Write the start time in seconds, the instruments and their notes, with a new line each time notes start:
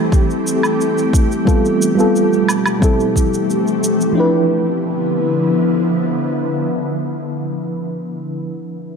Already playing: ambient pad E3 A3 C4 G4, fm electric piano G3 C4 E4 A4
0.12 kick, shaker
0.30 shaker
0.47 shaker
0.63 low woodblock, shaker
0.81 shaker
0.98 shaker
1.13 kick, shaker
1.32 shaker
1.45 ambient pad B2 F3 B3, fm electric piano G3 B3 F4 A4, kick, shaker
1.65 shaker
1.82 shaker
1.95 fm electric piano G3 B3 F4, shaker
2.00 fm electric piano A4
2.16 shaker
2.33 shaker
2.48 low woodblock, shaker
2.66 low woodblock, shaker
2.79 ambient pad E3 A3 C4, fm electric piano G3 C4 E4, kick
2.83 fm electric piano A4, shaker
3.00 shaker
3.16 kick, shaker
3.34 shaker
3.50 shaker
3.67 shaker
3.84 shaker
4.01 shaker
4.13 fm electric piano F3 D4
4.17 ambient pad D3 F3 B3 E4, fm electric piano E4 B4